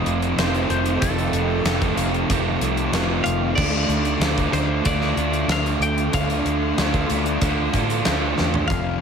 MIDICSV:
0, 0, Header, 1, 7, 480
1, 0, Start_track
1, 0, Tempo, 641026
1, 759, Time_signature, 4, 2, 24, 8
1, 6747, End_track
2, 0, Start_track
2, 0, Title_t, "Ambient pad"
2, 0, Program_c, 0, 92
2, 0, Note_on_c, 0, 63, 78
2, 0, Note_on_c, 0, 69, 69
2, 0, Note_on_c, 0, 77, 71
2, 0, Note_on_c, 0, 84, 82
2, 746, Note_off_c, 0, 84, 0
2, 761, Note_on_c, 0, 86, 78
2, 2657, Note_off_c, 0, 63, 0
2, 2659, Note_off_c, 0, 77, 0
2, 2660, Note_off_c, 0, 86, 0
2, 2663, Note_on_c, 0, 62, 75
2, 2670, Note_on_c, 0, 84, 86
2, 2673, Note_on_c, 0, 77, 65
2, 6479, Note_off_c, 0, 62, 0
2, 6482, Note_off_c, 0, 84, 0
2, 6484, Note_off_c, 0, 77, 0
2, 6492, Note_off_c, 0, 69, 0
2, 6747, End_track
3, 0, Start_track
3, 0, Title_t, "Clean electric guitar"
3, 0, Program_c, 1, 27
3, 0, Note_on_c, 1, 75, 94
3, 121, Note_off_c, 1, 75, 0
3, 121, Note_on_c, 1, 74, 94
3, 253, Note_off_c, 1, 74, 0
3, 291, Note_on_c, 1, 72, 96
3, 518, Note_off_c, 1, 72, 0
3, 527, Note_on_c, 1, 72, 96
3, 759, Note_on_c, 1, 69, 79
3, 771, Note_off_c, 1, 72, 0
3, 1449, Note_off_c, 1, 69, 0
3, 2425, Note_on_c, 1, 77, 91
3, 2658, Note_off_c, 1, 77, 0
3, 2661, Note_on_c, 1, 74, 98
3, 3395, Note_on_c, 1, 72, 91
3, 3411, Note_off_c, 1, 74, 0
3, 3643, Note_off_c, 1, 72, 0
3, 3643, Note_on_c, 1, 74, 95
3, 4130, Note_off_c, 1, 74, 0
3, 4133, Note_on_c, 1, 77, 100
3, 4359, Note_off_c, 1, 77, 0
3, 4362, Note_on_c, 1, 79, 107
3, 4598, Note_off_c, 1, 79, 0
3, 4601, Note_on_c, 1, 77, 95
3, 5288, Note_off_c, 1, 77, 0
3, 6497, Note_on_c, 1, 77, 94
3, 6747, Note_off_c, 1, 77, 0
3, 6747, End_track
4, 0, Start_track
4, 0, Title_t, "Overdriven electric guitar"
4, 0, Program_c, 2, 29
4, 0, Note_on_c, 2, 41, 95
4, 0, Note_on_c, 2, 48, 98
4, 42, Note_on_c, 2, 65, 73
4, 47, Note_on_c, 2, 60, 69
4, 52, Note_on_c, 2, 57, 62
4, 60, Note_on_c, 2, 51, 56
4, 279, Note_off_c, 2, 51, 0
4, 280, Note_off_c, 2, 41, 0
4, 285, Note_off_c, 2, 48, 0
4, 286, Note_off_c, 2, 57, 0
4, 288, Note_on_c, 2, 51, 83
4, 289, Note_on_c, 2, 57, 88
4, 296, Note_off_c, 2, 60, 0
4, 297, Note_off_c, 2, 65, 0
4, 299, Note_on_c, 2, 60, 77
4, 300, Note_on_c, 2, 65, 86
4, 756, Note_on_c, 2, 41, 85
4, 760, Note_off_c, 2, 51, 0
4, 762, Note_on_c, 2, 48, 97
4, 766, Note_off_c, 2, 57, 0
4, 769, Note_on_c, 2, 51, 103
4, 769, Note_on_c, 2, 57, 91
4, 770, Note_off_c, 2, 65, 0
4, 771, Note_off_c, 2, 60, 0
4, 773, Note_on_c, 2, 65, 98
4, 774, Note_on_c, 2, 60, 98
4, 1228, Note_off_c, 2, 51, 0
4, 1237, Note_on_c, 2, 51, 77
4, 1239, Note_off_c, 2, 57, 0
4, 1242, Note_on_c, 2, 57, 90
4, 1247, Note_off_c, 2, 60, 0
4, 1249, Note_off_c, 2, 65, 0
4, 1250, Note_on_c, 2, 60, 83
4, 1252, Note_on_c, 2, 65, 92
4, 1478, Note_off_c, 2, 41, 0
4, 1480, Note_off_c, 2, 48, 0
4, 1718, Note_off_c, 2, 51, 0
4, 1722, Note_on_c, 2, 41, 106
4, 1727, Note_on_c, 2, 48, 91
4, 1727, Note_on_c, 2, 51, 102
4, 1731, Note_off_c, 2, 57, 0
4, 1731, Note_off_c, 2, 60, 0
4, 1734, Note_on_c, 2, 57, 101
4, 1734, Note_on_c, 2, 60, 117
4, 1738, Note_off_c, 2, 65, 0
4, 1741, Note_on_c, 2, 65, 102
4, 1953, Note_off_c, 2, 65, 0
4, 1956, Note_on_c, 2, 65, 71
4, 1959, Note_off_c, 2, 60, 0
4, 1962, Note_off_c, 2, 51, 0
4, 1962, Note_on_c, 2, 60, 65
4, 1965, Note_off_c, 2, 57, 0
4, 1968, Note_on_c, 2, 57, 65
4, 1971, Note_on_c, 2, 51, 56
4, 2185, Note_off_c, 2, 51, 0
4, 2194, Note_on_c, 2, 51, 88
4, 2197, Note_off_c, 2, 57, 0
4, 2200, Note_off_c, 2, 41, 0
4, 2200, Note_on_c, 2, 57, 85
4, 2203, Note_off_c, 2, 48, 0
4, 2203, Note_off_c, 2, 60, 0
4, 2206, Note_off_c, 2, 65, 0
4, 2206, Note_on_c, 2, 60, 76
4, 2209, Note_on_c, 2, 65, 93
4, 2662, Note_off_c, 2, 51, 0
4, 2676, Note_on_c, 2, 50, 85
4, 2679, Note_off_c, 2, 57, 0
4, 2682, Note_on_c, 2, 57, 93
4, 2684, Note_off_c, 2, 60, 0
4, 2687, Note_on_c, 2, 62, 89
4, 2690, Note_off_c, 2, 65, 0
4, 2693, Note_on_c, 2, 65, 100
4, 3147, Note_off_c, 2, 50, 0
4, 3150, Note_on_c, 2, 50, 81
4, 3154, Note_off_c, 2, 57, 0
4, 3157, Note_on_c, 2, 57, 81
4, 3162, Note_off_c, 2, 62, 0
4, 3165, Note_on_c, 2, 62, 90
4, 3167, Note_off_c, 2, 65, 0
4, 3170, Note_on_c, 2, 65, 84
4, 3620, Note_off_c, 2, 50, 0
4, 3629, Note_on_c, 2, 50, 95
4, 3630, Note_off_c, 2, 62, 0
4, 3634, Note_off_c, 2, 57, 0
4, 3637, Note_on_c, 2, 57, 98
4, 3639, Note_on_c, 2, 62, 101
4, 3643, Note_off_c, 2, 65, 0
4, 3646, Note_on_c, 2, 65, 114
4, 3869, Note_off_c, 2, 65, 0
4, 3872, Note_on_c, 2, 65, 63
4, 3876, Note_off_c, 2, 62, 0
4, 3885, Note_on_c, 2, 62, 67
4, 3892, Note_off_c, 2, 57, 0
4, 3895, Note_on_c, 2, 57, 62
4, 4107, Note_off_c, 2, 50, 0
4, 4116, Note_on_c, 2, 50, 69
4, 4117, Note_off_c, 2, 57, 0
4, 4119, Note_off_c, 2, 62, 0
4, 4120, Note_on_c, 2, 57, 82
4, 4128, Note_on_c, 2, 62, 87
4, 4131, Note_off_c, 2, 65, 0
4, 4134, Note_on_c, 2, 65, 89
4, 4583, Note_off_c, 2, 50, 0
4, 4590, Note_off_c, 2, 57, 0
4, 4592, Note_on_c, 2, 50, 83
4, 4597, Note_off_c, 2, 62, 0
4, 4599, Note_on_c, 2, 57, 97
4, 4600, Note_off_c, 2, 65, 0
4, 4606, Note_on_c, 2, 62, 98
4, 4609, Note_on_c, 2, 65, 91
4, 5067, Note_off_c, 2, 50, 0
4, 5076, Note_off_c, 2, 57, 0
4, 5076, Note_on_c, 2, 50, 74
4, 5082, Note_off_c, 2, 62, 0
4, 5085, Note_on_c, 2, 57, 81
4, 5090, Note_off_c, 2, 65, 0
4, 5091, Note_on_c, 2, 62, 91
4, 5099, Note_on_c, 2, 65, 88
4, 5549, Note_off_c, 2, 50, 0
4, 5556, Note_off_c, 2, 57, 0
4, 5558, Note_on_c, 2, 50, 94
4, 5562, Note_off_c, 2, 62, 0
4, 5565, Note_on_c, 2, 57, 91
4, 5566, Note_off_c, 2, 65, 0
4, 5571, Note_on_c, 2, 62, 104
4, 5575, Note_on_c, 2, 65, 90
4, 5793, Note_off_c, 2, 65, 0
4, 5801, Note_off_c, 2, 62, 0
4, 5802, Note_on_c, 2, 65, 67
4, 5803, Note_off_c, 2, 57, 0
4, 5810, Note_on_c, 2, 62, 68
4, 5812, Note_on_c, 2, 57, 52
4, 6028, Note_off_c, 2, 50, 0
4, 6030, Note_off_c, 2, 57, 0
4, 6037, Note_off_c, 2, 62, 0
4, 6037, Note_on_c, 2, 50, 77
4, 6039, Note_on_c, 2, 57, 79
4, 6043, Note_off_c, 2, 65, 0
4, 6046, Note_on_c, 2, 62, 89
4, 6052, Note_on_c, 2, 65, 96
4, 6502, Note_off_c, 2, 50, 0
4, 6503, Note_off_c, 2, 57, 0
4, 6507, Note_off_c, 2, 62, 0
4, 6510, Note_off_c, 2, 65, 0
4, 6747, End_track
5, 0, Start_track
5, 0, Title_t, "Distorted electric guitar"
5, 0, Program_c, 3, 30
5, 0, Note_on_c, 3, 53, 97
5, 277, Note_on_c, 3, 41, 77
5, 285, Note_on_c, 3, 48, 82
5, 290, Note_off_c, 3, 53, 0
5, 293, Note_on_c, 3, 53, 79
5, 747, Note_off_c, 3, 41, 0
5, 757, Note_off_c, 3, 48, 0
5, 770, Note_off_c, 3, 53, 0
5, 773, Note_on_c, 3, 53, 110
5, 1237, Note_on_c, 3, 41, 76
5, 1243, Note_on_c, 3, 48, 81
5, 1250, Note_off_c, 3, 53, 0
5, 1253, Note_on_c, 3, 53, 85
5, 1698, Note_off_c, 3, 41, 0
5, 1708, Note_off_c, 3, 48, 0
5, 1721, Note_off_c, 3, 53, 0
5, 1724, Note_on_c, 3, 53, 108
5, 2195, Note_on_c, 3, 41, 76
5, 2202, Note_on_c, 3, 48, 75
5, 2210, Note_off_c, 3, 53, 0
5, 2213, Note_on_c, 3, 53, 92
5, 2662, Note_off_c, 3, 41, 0
5, 2666, Note_off_c, 3, 48, 0
5, 2677, Note_off_c, 3, 53, 0
5, 6503, Note_on_c, 3, 41, 93
5, 6517, Note_on_c, 3, 48, 88
5, 6521, Note_on_c, 3, 53, 95
5, 6736, Note_off_c, 3, 41, 0
5, 6739, Note_off_c, 3, 48, 0
5, 6747, Note_off_c, 3, 53, 0
5, 6747, End_track
6, 0, Start_track
6, 0, Title_t, "Fingered electric bass"
6, 0, Program_c, 4, 33
6, 45, Note_on_c, 4, 29, 99
6, 242, Note_off_c, 4, 29, 0
6, 282, Note_on_c, 4, 29, 83
6, 480, Note_off_c, 4, 29, 0
6, 519, Note_on_c, 4, 29, 87
6, 718, Note_off_c, 4, 29, 0
6, 763, Note_on_c, 4, 29, 97
6, 961, Note_off_c, 4, 29, 0
6, 993, Note_on_c, 4, 29, 90
6, 1195, Note_off_c, 4, 29, 0
6, 1232, Note_on_c, 4, 29, 84
6, 1434, Note_off_c, 4, 29, 0
6, 1469, Note_on_c, 4, 29, 83
6, 1672, Note_off_c, 4, 29, 0
6, 1719, Note_on_c, 4, 29, 91
6, 1918, Note_off_c, 4, 29, 0
6, 1955, Note_on_c, 4, 36, 87
6, 2155, Note_off_c, 4, 36, 0
6, 2188, Note_on_c, 4, 29, 92
6, 2392, Note_off_c, 4, 29, 0
6, 2438, Note_on_c, 4, 29, 82
6, 2638, Note_off_c, 4, 29, 0
6, 2678, Note_on_c, 4, 38, 100
6, 2877, Note_off_c, 4, 38, 0
6, 2909, Note_on_c, 4, 38, 85
6, 3112, Note_off_c, 4, 38, 0
6, 3141, Note_on_c, 4, 38, 81
6, 3347, Note_off_c, 4, 38, 0
6, 3388, Note_on_c, 4, 38, 95
6, 3591, Note_off_c, 4, 38, 0
6, 3636, Note_on_c, 4, 38, 100
6, 3836, Note_off_c, 4, 38, 0
6, 3868, Note_on_c, 4, 38, 95
6, 4071, Note_off_c, 4, 38, 0
6, 4103, Note_on_c, 4, 38, 95
6, 4308, Note_off_c, 4, 38, 0
6, 4340, Note_on_c, 4, 38, 92
6, 4546, Note_off_c, 4, 38, 0
6, 4596, Note_on_c, 4, 38, 99
6, 4796, Note_off_c, 4, 38, 0
6, 4831, Note_on_c, 4, 38, 87
6, 5032, Note_off_c, 4, 38, 0
6, 5074, Note_on_c, 4, 38, 82
6, 5274, Note_off_c, 4, 38, 0
6, 5316, Note_on_c, 4, 38, 88
6, 5516, Note_off_c, 4, 38, 0
6, 5554, Note_on_c, 4, 38, 90
6, 5754, Note_off_c, 4, 38, 0
6, 5789, Note_on_c, 4, 45, 93
6, 5992, Note_off_c, 4, 45, 0
6, 6036, Note_on_c, 4, 38, 85
6, 6235, Note_off_c, 4, 38, 0
6, 6284, Note_on_c, 4, 40, 86
6, 6512, Note_on_c, 4, 29, 89
6, 6524, Note_off_c, 4, 40, 0
6, 6747, Note_off_c, 4, 29, 0
6, 6747, End_track
7, 0, Start_track
7, 0, Title_t, "Drums"
7, 46, Note_on_c, 9, 42, 76
7, 121, Note_off_c, 9, 42, 0
7, 168, Note_on_c, 9, 42, 49
7, 242, Note_off_c, 9, 42, 0
7, 288, Note_on_c, 9, 42, 96
7, 290, Note_on_c, 9, 38, 112
7, 363, Note_off_c, 9, 42, 0
7, 365, Note_off_c, 9, 38, 0
7, 408, Note_on_c, 9, 42, 46
7, 482, Note_off_c, 9, 42, 0
7, 525, Note_on_c, 9, 42, 74
7, 600, Note_off_c, 9, 42, 0
7, 641, Note_on_c, 9, 42, 45
7, 716, Note_off_c, 9, 42, 0
7, 763, Note_on_c, 9, 42, 119
7, 764, Note_on_c, 9, 36, 121
7, 838, Note_off_c, 9, 42, 0
7, 839, Note_off_c, 9, 36, 0
7, 887, Note_on_c, 9, 42, 52
7, 962, Note_off_c, 9, 42, 0
7, 997, Note_on_c, 9, 42, 76
7, 1072, Note_off_c, 9, 42, 0
7, 1239, Note_on_c, 9, 42, 110
7, 1240, Note_on_c, 9, 38, 115
7, 1314, Note_off_c, 9, 42, 0
7, 1315, Note_off_c, 9, 38, 0
7, 1361, Note_on_c, 9, 36, 90
7, 1361, Note_on_c, 9, 42, 49
7, 1436, Note_off_c, 9, 36, 0
7, 1436, Note_off_c, 9, 42, 0
7, 1479, Note_on_c, 9, 42, 81
7, 1554, Note_off_c, 9, 42, 0
7, 1604, Note_on_c, 9, 42, 46
7, 1679, Note_off_c, 9, 42, 0
7, 1721, Note_on_c, 9, 36, 112
7, 1721, Note_on_c, 9, 42, 104
7, 1796, Note_off_c, 9, 36, 0
7, 1796, Note_off_c, 9, 42, 0
7, 1958, Note_on_c, 9, 42, 84
7, 2033, Note_off_c, 9, 42, 0
7, 2076, Note_on_c, 9, 42, 50
7, 2151, Note_off_c, 9, 42, 0
7, 2196, Note_on_c, 9, 42, 99
7, 2198, Note_on_c, 9, 38, 109
7, 2271, Note_off_c, 9, 42, 0
7, 2273, Note_off_c, 9, 38, 0
7, 2439, Note_on_c, 9, 42, 81
7, 2514, Note_off_c, 9, 42, 0
7, 2677, Note_on_c, 9, 49, 108
7, 2679, Note_on_c, 9, 36, 116
7, 2751, Note_off_c, 9, 49, 0
7, 2753, Note_off_c, 9, 36, 0
7, 2917, Note_on_c, 9, 42, 77
7, 2992, Note_off_c, 9, 42, 0
7, 3033, Note_on_c, 9, 42, 45
7, 3108, Note_off_c, 9, 42, 0
7, 3156, Note_on_c, 9, 42, 94
7, 3157, Note_on_c, 9, 38, 119
7, 3230, Note_off_c, 9, 42, 0
7, 3232, Note_off_c, 9, 38, 0
7, 3278, Note_on_c, 9, 36, 86
7, 3278, Note_on_c, 9, 42, 44
7, 3353, Note_off_c, 9, 36, 0
7, 3353, Note_off_c, 9, 42, 0
7, 3394, Note_on_c, 9, 42, 74
7, 3469, Note_off_c, 9, 42, 0
7, 3633, Note_on_c, 9, 42, 104
7, 3636, Note_on_c, 9, 36, 116
7, 3708, Note_off_c, 9, 42, 0
7, 3711, Note_off_c, 9, 36, 0
7, 3755, Note_on_c, 9, 38, 33
7, 3829, Note_off_c, 9, 38, 0
7, 3874, Note_on_c, 9, 42, 75
7, 3949, Note_off_c, 9, 42, 0
7, 3994, Note_on_c, 9, 42, 43
7, 4069, Note_off_c, 9, 42, 0
7, 4112, Note_on_c, 9, 42, 95
7, 4114, Note_on_c, 9, 38, 101
7, 4187, Note_off_c, 9, 42, 0
7, 4189, Note_off_c, 9, 38, 0
7, 4239, Note_on_c, 9, 42, 47
7, 4314, Note_off_c, 9, 42, 0
7, 4357, Note_on_c, 9, 42, 74
7, 4432, Note_off_c, 9, 42, 0
7, 4476, Note_on_c, 9, 42, 45
7, 4551, Note_off_c, 9, 42, 0
7, 4592, Note_on_c, 9, 42, 118
7, 4596, Note_on_c, 9, 36, 126
7, 4667, Note_off_c, 9, 42, 0
7, 4671, Note_off_c, 9, 36, 0
7, 4716, Note_on_c, 9, 42, 48
7, 4791, Note_off_c, 9, 42, 0
7, 4835, Note_on_c, 9, 42, 74
7, 4910, Note_off_c, 9, 42, 0
7, 5077, Note_on_c, 9, 42, 97
7, 5079, Note_on_c, 9, 38, 113
7, 5152, Note_off_c, 9, 42, 0
7, 5154, Note_off_c, 9, 38, 0
7, 5196, Note_on_c, 9, 36, 87
7, 5196, Note_on_c, 9, 42, 47
7, 5271, Note_off_c, 9, 36, 0
7, 5271, Note_off_c, 9, 42, 0
7, 5313, Note_on_c, 9, 42, 81
7, 5388, Note_off_c, 9, 42, 0
7, 5434, Note_on_c, 9, 42, 51
7, 5509, Note_off_c, 9, 42, 0
7, 5552, Note_on_c, 9, 42, 104
7, 5554, Note_on_c, 9, 36, 118
7, 5627, Note_off_c, 9, 42, 0
7, 5629, Note_off_c, 9, 36, 0
7, 5792, Note_on_c, 9, 42, 75
7, 5794, Note_on_c, 9, 36, 84
7, 5867, Note_off_c, 9, 42, 0
7, 5869, Note_off_c, 9, 36, 0
7, 5915, Note_on_c, 9, 42, 48
7, 5990, Note_off_c, 9, 42, 0
7, 6029, Note_on_c, 9, 42, 99
7, 6031, Note_on_c, 9, 38, 110
7, 6104, Note_off_c, 9, 42, 0
7, 6106, Note_off_c, 9, 38, 0
7, 6273, Note_on_c, 9, 38, 67
7, 6348, Note_off_c, 9, 38, 0
7, 6394, Note_on_c, 9, 43, 87
7, 6469, Note_off_c, 9, 43, 0
7, 6514, Note_on_c, 9, 42, 73
7, 6516, Note_on_c, 9, 36, 121
7, 6589, Note_off_c, 9, 42, 0
7, 6590, Note_off_c, 9, 36, 0
7, 6747, End_track
0, 0, End_of_file